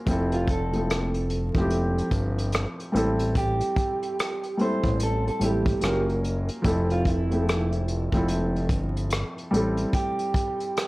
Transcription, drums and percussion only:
0.07 kick loud
0.07 closed hi-hat medium
0.32 closed hi-hat medium
0.48 kick medium
0.48 closed hi-hat medium
0.73 closed hi-hat soft
0.90 cross-stick medium
0.90 closed hi-hat medium
1.14 closed hi-hat soft
1.30 closed hi-hat medium
1.55 kick medium
1.55 closed hi-hat soft
1.70 closed hi-hat medium
1.98 closed hi-hat soft
2.11 kick medium
2.11 closed hi-hat medium
2.38 closed hi-hat medium
2.52 cross-stick loud
2.52 closed hi-hat medium
2.80 closed hi-hat soft
2.95 closed hi-hat medium
3.19 closed hi-hat medium
3.35 kick loud
3.35 closed hi-hat medium
3.61 closed hi-hat medium
3.76 kick medium
3.76 closed hi-hat medium
4.03 closed hi-hat soft
4.19 cross-stick loud
4.19 closed hi-hat medium
4.43 closed hi-hat soft
4.59 closed hi-hat medium
4.84 kick medium
4.84 closed hi-hat soft
5.00 closed hi-hat medium
5.27 closed hi-hat soft
5.41 closed hi-hat medium
5.66 kick medium
5.66 closed hi-hat medium
5.81 cross-stick medium
5.81 closed hi-hat medium
6.09 closed hi-hat soft
6.24 closed hi-hat medium
6.49 closed hi-hat soft
6.64 kick loud
6.64 closed hi-hat medium
6.90 closed hi-hat soft
7.05 kick medium
7.05 closed hi-hat medium
7.31 closed hi-hat soft
7.49 cross-stick loud
7.49 closed hi-hat medium
7.72 closed hi-hat soft
7.88 closed hi-hat medium
8.12 kick medium
8.12 closed hi-hat soft
8.28 closed hi-hat medium
8.56 closed hi-hat soft
8.69 kick medium
8.69 closed hi-hat medium
8.97 closed hi-hat soft
9.10 cross-stick loud
9.10 closed hi-hat medium
9.38 closed hi-hat soft
9.54 closed hi-hat medium
9.77 closed hi-hat medium
9.93 kick loud
9.93 closed hi-hat medium
10.19 closed hi-hat soft
10.34 kick loud
10.34 closed hi-hat medium
10.60 closed hi-hat soft
10.77 cross-stick loud
10.77 closed hi-hat medium

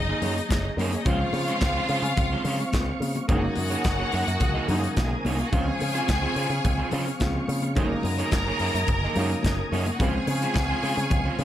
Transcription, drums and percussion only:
0.22 open hi-hat medium
0.22 low conga medium
0.38 closed hi-hat soft
0.49 kick loud
0.49 snare loud
0.49 clap loud
0.49 closed hi-hat medium
0.49 high conga medium
0.78 open hi-hat medium
0.78 high conga medium
0.91 closed hi-hat soft
0.91 high conga medium
1.05 kick loud
1.05 closed hi-hat medium
1.05 muted conga medium
1.33 open hi-hat medium
1.33 muted conga medium
1.48 closed hi-hat soft
1.61 kick loud
1.61 snare loud
1.61 clap loud
1.61 closed hi-hat medium
1.61 high conga medium
1.88 open hi-hat medium
2.05 closed hi-hat soft
2.17 kick loud
2.17 closed hi-hat medium
2.17 muted conga medium
2.17 low conga medium
2.45 open hi-hat medium
2.45 low conga medium
2.60 closed hi-hat soft
2.72 kick medium
2.72 snare loud
2.72 clap medium
2.72 closed hi-hat medium
2.72 high conga medium
3.02 open hi-hat medium
3.02 high conga medium
3.15 closed hi-hat soft
3.15 high conga medium
3.29 kick loud
3.29 closed hi-hat medium
3.29 muted conga medium
3.56 open hi-hat medium
3.56 muted conga medium
3.71 closed hi-hat medium
3.84 kick loud
3.84 snare loud
3.84 clap medium
3.84 closed hi-hat medium
3.84 high conga medium
4.12 open hi-hat medium
4.28 closed hi-hat medium
4.40 kick loud
4.40 closed hi-hat medium
4.40 muted conga medium
4.40 low conga medium
4.68 open hi-hat medium
4.68 muted conga soft
4.68 low conga medium
4.84 closed hi-hat soft
4.96 kick loud
4.96 snare loud
4.96 clap medium
4.96 closed hi-hat medium
4.96 high conga medium
5.25 open hi-hat medium
5.25 high conga medium
5.39 closed hi-hat soft
5.39 high conga medium
5.53 kick loud
5.53 closed hi-hat medium
5.53 muted conga medium
5.80 open hi-hat medium
5.80 muted conga medium
5.96 closed hi-hat soft
6.08 kick loud
6.08 snare loud
6.08 clap medium
6.08 closed hi-hat medium
6.08 high conga medium
6.36 open hi-hat medium
6.52 closed hi-hat soft
6.65 kick loud
6.65 closed hi-hat medium
6.65 muted conga medium
6.65 low conga medium
6.91 open hi-hat medium
6.91 low conga medium
7.07 closed hi-hat soft
7.20 kick loud
7.20 snare loud
7.20 clap medium
7.20 closed hi-hat medium
7.20 high conga medium
7.48 open hi-hat medium
7.48 high conga medium
7.62 closed hi-hat soft
7.62 high conga medium
7.75 kick loud
7.75 closed hi-hat medium
7.75 muted conga medium
8.03 open hi-hat medium
8.03 muted conga medium
8.19 closed hi-hat soft
8.31 kick loud
8.31 snare loud
8.31 clap medium
8.31 closed hi-hat medium
8.31 high conga medium
8.59 open hi-hat medium
8.75 closed hi-hat medium
8.87 kick loud
8.87 closed hi-hat medium
8.87 muted conga medium
8.87 low conga medium
9.14 open hi-hat medium
9.14 muted conga soft
9.14 low conga medium
9.32 closed hi-hat soft
9.43 kick medium
9.43 snare loud
9.43 closed hi-hat medium
9.43 high conga medium
9.47 clap medium
9.73 open hi-hat medium
9.73 high conga medium
9.86 closed hi-hat soft
9.86 high conga medium
10.00 kick loud
10.00 closed hi-hat medium
10.00 muted conga medium
10.27 open hi-hat medium
10.27 muted conga medium
10.42 closed hi-hat medium
10.54 kick loud
10.54 snare loud
10.54 clap medium
10.54 closed hi-hat medium
10.54 high conga medium
10.83 open hi-hat medium
10.98 closed hi-hat soft
11.10 kick loud
11.10 closed hi-hat medium
11.10 muted conga medium
11.10 low conga medium
11.39 open hi-hat medium
11.39 muted conga soft
11.39 low conga medium

